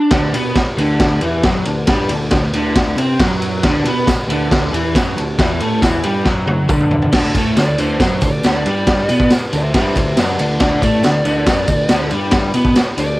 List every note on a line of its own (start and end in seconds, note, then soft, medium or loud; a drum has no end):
0.00 0.11 D4 loud
0.10 0.32 D2 loud
0.10 0.33 D3 loud
0.10 kick loud
0.10 snare loud
0.10 ride loud
0.33 0.54 B2 loud
0.33 0.55 B3 loud
0.33 ride medium
0.55 muted picked electric bass stroke soft
0.55 muted overdriven electric guitar stroke medium
0.55 kick loud
0.55 snare loud
0.55 ride medium
0.77 1.19 D2 medium
0.77 1.21 D3 loud
0.77 ride medium
0.99 kick loud
0.99 snare loud
0.99 ride loud
1.21 1.43 E2 medium
1.21 1.44 E3 medium
1.21 ride medium
1.43 1.64 F#2 loud
1.43 1.66 F#3 loud
1.43 kick loud
1.43 snare loud
1.43 ride loud
1.65 1.86 D2 medium
1.65 1.84 D3 medium
1.65 ride medium
1.87 2.08 G2 loud
1.87 2.09 G3 loud
1.87 kick loud
1.87 snare loud
1.87 ride loud
2.09 2.30 D2 medium
2.09 2.28 D3 medium
2.09 ride medium
2.31 2.52 D2 medium
2.31 2.50 D3 medium
2.31 kick loud
2.31 snare loud
2.31 ride loud
2.53 2.95 D2 medium
2.53 2.97 D3 loud
2.53 ride medium
2.75 kick loud
2.75 snare loud
2.75 ride loud
2.96 3.17 C3 loud
2.96 3.19 C4 loud
2.96 ride medium
3.19 3.60 F#2 loud
3.19 3.63 F#3 loud
3.19 kick loud
3.19 snare loud
3.19 ride loud
3.42 ride medium
3.63 3.83 D2 loud
3.63 3.86 D3 loud
3.63 kick loud
3.63 snare loud
3.63 ride loud
3.84 4.05 B2 loud
3.84 4.07 B3 loud
3.84 ride medium
4.07 muted picked electric bass stroke soft
4.07 muted overdriven electric guitar stroke medium
4.07 kick loud
4.07 snare loud
4.07 ride loud
4.07 tambourine medium
4.28 4.69 D2 medium
4.28 4.72 D3 loud
4.28 ride medium
4.51 kick loud
4.51 snare loud
4.51 ride loud
4.73 4.93 E2 medium
4.73 4.94 E3 loud
4.73 ride medium
4.95 5.15 F#2 medium
4.95 5.17 F#3 loud
4.95 kick loud
4.95 snare loud
4.95 ride loud
4.95 tambourine loud
5.17 5.37 D2 medium
5.17 5.35 D3 medium
5.17 ride medium
5.38 5.59 E2 loud
5.38 5.60 E3 loud
5.38 kick loud
5.38 snare loud
5.38 ride loud
5.60 5.81 A2 loud
5.60 5.82 A3 loud
5.60 ride medium
5.81 6.03 E2 loud
5.81 6.03 E3 loud
5.81 kick loud
5.81 snare loud
5.81 ride medium
5.81 tambourine loud
6.03 6.25 G2 medium
6.03 6.25 G3 loud
6.03 ride medium
6.25 6.66 F#2 loud
6.25 6.68 F#3 loud
6.25 kick loud
6.25 snare medium
6.47 high tom medium
6.69 7.10 D2 medium
6.69 7.11 D3 medium
6.69 kick loud
6.69 mid tom loud
6.69 tambourine medium
6.80 mid tom medium
6.91 floor tom loud
7.02 floor tom medium
7.12 7.33 D2 loud
7.12 7.34 D3 loud
7.12 kick loud
7.12 snare loud
7.12 crash loud
7.12 tambourine soft
7.34 7.55 A2 medium
7.34 7.56 A3 loud
7.34 kick medium
7.34 ride medium
7.34 tambourine medium
7.56 7.77 D2 medium
7.56 7.74 D3 medium
7.56 7.79 D5 loud
7.56 snare loud
7.56 ride medium
7.56 tambourine loud
7.78 7.99 D2 medium
7.78 8.00 D3 loud
7.78 8.22 C5 medium
7.78 ride medium
7.78 tambourine medium
8.00 8.20 F#2 loud
8.00 8.22 F#3 loud
8.00 kick loud
8.00 snare loud
8.00 ride loud
8.00 tambourine medium
8.21 8.42 D2 medium
8.21 8.40 D3 medium
8.21 kick medium
8.21 ride medium
8.21 tambourine medium
8.25 8.45 D5 loud
8.43 8.64 D2 medium
8.43 8.65 D3 loud
8.43 snare loud
8.43 ride loud
8.43 tambourine loud
8.49 9.31 D5 loud
8.65 9.06 G2 medium
8.65 9.09 G3 loud
8.65 ride medium
8.65 tambourine soft
8.87 kick loud
8.87 snare loud
8.87 ride loud
8.87 tambourine soft
9.09 9.30 B2 loud
9.09 9.30 B3 loud
9.09 ride medium
9.09 tambourine medium
9.20 kick medium
9.30 muted overdriven electric guitar stroke medium
9.30 muted picked electric bass stroke soft
9.30 snare loud
9.30 ride medium
9.30 tambourine loud
9.52 9.73 D2 medium
9.52 9.70 D3 medium
9.52 9.76 C5 medium
9.52 ride medium
9.52 tambourine medium
9.57 9.76 E5 medium
9.74 9.94 G2 loud
9.74 9.96 G3 loud
9.74 kick loud
9.74 snare loud
9.74 ride loud
9.74 tambourine medium
9.78 9.97 C5 medium
9.78 9.97 E5 medium
9.95 10.16 D2 medium
9.95 10.14 D3 medium
9.95 10.17 C5 medium
9.95 kick medium
9.95 ride medium
9.95 tambourine medium
10.00 10.19 E5 medium
10.17 10.38 F#2 medium
10.17 10.38 F#3 loud
10.17 10.39 D5 medium
10.17 snare loud
10.17 ride loud
10.17 tambourine loud
10.21 10.40 F#5 loud
10.39 10.60 D2 medium
10.39 10.56 D3 medium
10.39 10.60 D5 medium
10.39 10.60 F#5 medium
10.39 ride medium
10.39 tambourine soft
10.60 10.81 D2 loud
10.60 10.81 D3 loud
10.60 10.81 D5 medium
10.60 10.82 F#5 loud
10.60 kick loud
10.60 snare loud
10.60 ride loud
10.60 tambourine soft
10.81 11.02 A2 loud
10.81 11.03 A3 loud
10.81 12.08 D5 loud
10.81 kick medium
10.81 ride medium
10.81 tambourine medium
11.03 11.25 D2 medium
11.03 11.21 D3 medium
11.03 snare loud
11.03 ride medium
11.03 tambourine medium
11.24 11.46 D2 medium
11.24 11.46 D3 loud
11.24 ride medium
11.24 tambourine medium
11.46 11.67 F#2 loud
11.46 11.68 F#3 loud
11.46 kick loud
11.46 snare loud
11.46 ride loud
11.46 tambourine medium
11.67 11.88 D2 medium
11.67 11.86 D3 medium
11.67 kick medium
11.67 ride medium
11.67 tambourine medium
11.89 12.11 D2 medium
11.89 12.11 D3 loud
11.89 snare loud
11.89 ride loud
11.89 tambourine loud
12.11 12.52 G2 loud
12.11 12.54 G3 loud
12.11 ride medium
12.11 tambourine soft
12.31 kick loud
12.31 snare loud
12.31 ride loud
12.31 tambourine soft
12.54 12.74 B2 loud
12.54 12.76 B3 loud
12.54 ride medium
12.54 tambourine medium
12.65 kick medium
12.76 muted picked electric bass stroke soft
12.76 muted overdriven electric guitar stroke medium
12.76 snare loud
12.76 ride loud
12.76 tambourine loud
12.97 13.17 D2 medium
12.97 13.15 D3 medium
12.97 13.20 D5 loud
12.97 ride medium
12.97 tambourine medium